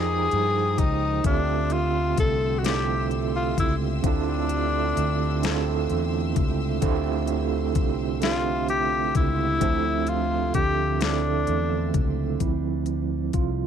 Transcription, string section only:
Already playing: A#4 G5 A#5 D#6
1.24 G4 E5 C6 E6

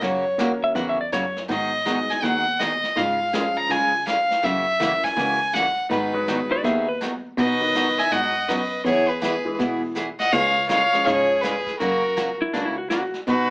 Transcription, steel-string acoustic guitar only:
0.01 C#3 F#3 A#3 C#4 F#4
0.39 C#3 F#3 A#3 C#4 F#4
0.75 C#3 F#3 A#3 C#4 F#4
1.12 C#3 F#3 A#3 C#4 F#4
1.48 D#3 F#3 B3 D#4 G#4
1.85 D#3 F#3 B3 D#4 G#4
2.23 D#3 F#3 B3 D#4 G#4
2.60 D#3 F#3 B3 D#4 G#4
2.96 C#3 G#3 C#4 F4 G#4
3.33 C#3 G#3 C#4 F4 G#4
3.70 C#3 G#3 C#4 F4 G#4
4.06 C#3 G#3 C#4 F4 G#4
4.42 C#3 E3 A#3 C#4 F#4
4.80 C#3 E3 A#3 C#4 F#4
5.16 C#3 E3 A#3 C#4 F#4
5.53 C#3 E3 A#3 C#4 F#4
5.90 D#3 F#3 B3 D#4 G#4
6.28 D#3 F#3 B3 D#4 G#4
6.64 D#3 F#3 B3 D#4 G#4
7.01 D#3 F#3 B3 D#4 G#4
7.38 B2 F#3 B3 D#4 F#4
7.75 B2 F#3 B3 D#4 F#4
8.11 B2 F#3 B3 D#4 F#4
8.49 B2 F#3 B3 D#4 F#4
8.85 E3 B3 E4 G#4
9.21 E3 B3 E4 G#4
9.59 E3 B3 E4 G#4
9.95 E3 B3 E4 G#4
10.33 C#3 G#3 C#4 F4 G#4
10.69 C#3 G#3 C#4 F4 G#4
11.06 C#3 G#3 C#4 F4 G#4
11.43 C#3 G#3 C#4 F4 G#4
11.80 C#3 F#3 A#3 C#4 F#4
12.17 C#3 F#3 A#3 C#4 F#4
12.54 C#3 F#3 A#3 C#4 F#4
12.90 C#3 F#3 A#3 C#4 F#4
13.27 B2 F#3 B3 D#4 F#4

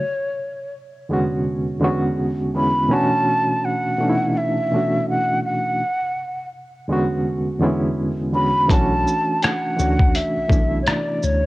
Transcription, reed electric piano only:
1.09 E2 D3 G#3 B3 C#4
1.14 F#4
1.80 E2 D3 G#3 B3 C#4
1.84 F#4
2.53 E2 D3 G#3 B3 C#4
2.58 E4
2.89 B2 E3 A3 C#4 D4
2.93 F#4
3.98 B2 E3 A3 C#4 D4
4.03 D#4
4.09 E4
4.72 B2 E3 A3 C#4 D4
4.76 F#4
6.88 E2 D3 G#3 B3 C#4
6.92 F#4
7.60 E2 D3 G#3 B3 C#4
7.64 E4
8.32 E2 D3 G#3 B3 C#4
8.36 F#4
8.69 E3 A3 C#4 D4
8.73 F#4
9.77 E3 A3 C#4 D4
9.81 F#4
10.49 E3 A3 B3 D4
10.53 E4

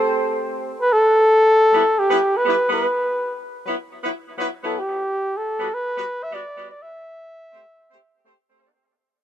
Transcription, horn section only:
Already playing: A3 C4 G4 C5
1.73 G3 B3 E4 B4
2.10 G3 B3 E4 B4
2.45 G3 B3 E4 B4
2.69 G3 B3 E4 B4
3.66 F#3 B3 E4 B4
4.04 F#3 B3 E4 B4
4.38 F#3 B3 E4 B4
4.62 F#3 B3 E4 B4
5.59 G3 B3 F#4 B4
5.97 G3 B3 F#4 B4
6.32 G3 B3 F#4 B4
6.55 G3 B3 F#4 B4
7.52 A3 C4 G4 C5
7.90 A3 C4 G4 C5
8.25 A3 C4 G4 C5
8.49 A3 C4 G4 C5

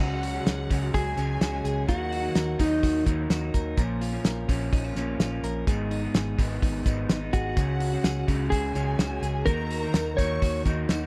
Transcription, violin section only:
Already playing: F#5
0.94 G#5
1.89 F#5
2.60 D#5
7.33 F#5
8.51 G#5
9.45 A#5
10.18 C#6

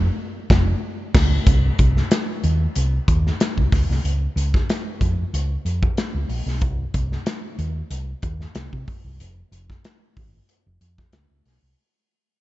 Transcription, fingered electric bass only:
0.50 F1
1.15 C#2
1.47 C2
1.79 C2
2.44 D#2
2.76 C2
3.08 D#2
3.57 C2
3.73 C#2
3.89 C2
4.04 C#2
4.36 C#2
5.01 F2
5.33 C#2
5.65 F2
6.14 C#2
6.29 A#1
6.46 B1
6.62 C2
6.94 C2
7.58 D#2
7.90 C2
8.23 D#2
8.55 C2
8.73 C3
9.04 C2
9.20 F1
9.51 F1
10.17 G#1
10.66 F1
10.81 F2
11.13 C#2
11.30 C#2
11.45 B1
11.62 C2

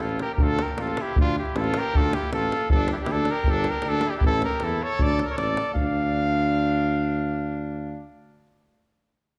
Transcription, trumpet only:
0.01 F4
0.21 G4
0.35 G4
0.42 F4
0.59 G4
0.79 F4
1.01 E4
1.20 D4
1.41 E4
1.61 F4
1.79 G4
1.98 F4
2.16 E4
2.35 F4
2.74 D4
2.92 D4 E4
3.03 E4
3.12 D4
3.31 G4
3.48 D4
3.66 G4
3.85 D4
4.06 D4 E4
4.17 E4
4.26 E4
4.44 G4
4.65 E4
4.83 A4
5.02 A4
5.22 A4 A#4
5.32 A4
5.41 A4
5.76 D4

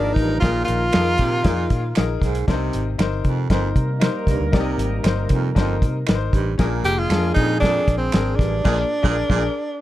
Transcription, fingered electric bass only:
Already playing: G#1
0.16 A1
0.42 A#1
0.69 A#1
0.95 F2
1.19 A#2
1.45 F2
1.71 A#2
1.98 A#1
2.21 B1
2.48 C2
2.74 G#1
2.99 G1
3.25 C3
3.50 G1
3.76 C3
4.27 C2
4.40 D2
4.54 C2
4.78 G#1
5.04 G1
5.30 C3
5.56 G1
5.82 C3
6.09 G#1
6.33 A1
6.59 A#1
6.84 F1
7.10 F2
7.36 A#2
7.88 A#1
8.14 G#1
8.39 A1
8.66 A#1
9.04 A#1
9.30 A#1

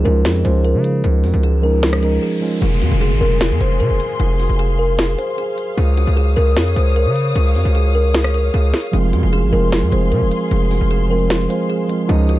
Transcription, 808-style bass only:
0.05 C#2
0.25 F2
0.45 C#2
0.74 C#3
1.04 C#2
1.24 F2
1.34 C#2
2.62 F1
2.82 F2
2.91 F1
3.11 G#1
3.21 F1
3.51 F2
3.61 F1
3.80 C3
3.90 F1
4.20 F1
4.49 F1
5.78 C#2
6.07 C#2
6.37 C#2
6.57 F2
6.76 C#2
7.06 C#3
7.36 C#2
7.55 F2
7.65 C#2
8.54 C#2
8.93 F1
9.13 F2
9.23 F1
9.43 G#1
9.53 F1
9.82 F2
9.92 F1
10.12 C3
10.22 F1
10.51 F1
10.81 F1
12.09 C#2

